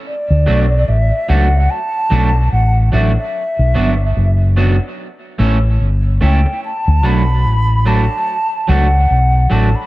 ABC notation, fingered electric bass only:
X:1
M:4/4
L:1/16
Q:"Swing 16ths" 1/4=73
K:D
V:1 name="Fingered electric bass" clef=bass
z D,, B,,,2 A,,, z C,,2 z2 B,,,2 A,,,2 A,,, z | z B,,, G,,,2 F,,,3 z3 A,,,2 G,,,2 C,, z | z D,, B,,,2 A,,,3 z3 C,,2 B,,,2 A,,, z |]